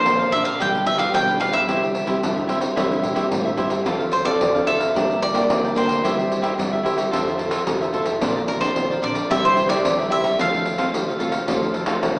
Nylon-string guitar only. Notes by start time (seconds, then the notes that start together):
Already playing: F3 A#3 D4
0.06 F2
0.32 F3 A#3 D4
0.60 B2 G3 D4 F4
0.98 G3 D4 F4
1.14 B2
1.40 G3 D4 F4
1.68 C3 G3 C4 E4
2.06 G3 C4 E4
2.23 G2
2.49 G3 C4 E4
2.77 C3 G3 C4 E4
3.16 G3 C4 E4
3.31 G2
3.58 G3 C4 E4
3.86 F3 C4 F4 A4
4.25 C4 F4 A4
4.40 C3
4.66 C4 F4 A4
4.95 G3 A#3 D4 A#4
5.34 A#3 D4 A#4
5.49 D3
5.76 A#3 D4 A#4
6.04 G3 C4 E4 G4
6.18 C4 E4 G4
6.59 G3 C4 E4 G4
6.85 C4 E4 G4
7.13 F3 C4 E4 A4
7.39 C4 E4 A4
7.67 C3
7.93 C4 E4 A4
8.22 A#2 F3 C4 D4
8.60 F3 C4 D4
8.76 F3
9.02 F3 C4 D4
9.30 C3 G3 C4 E4
9.69 G3 C4 E4
9.84 G2
10.11 G3 C4 E4
10.39 F3 A3 C4 F4
10.78 A3 C4 F4
10.93 C3
11.20 A3 C4 F4
11.48 F3 A3 C4 F4
11.87 A3 C4 F4
12.02 C3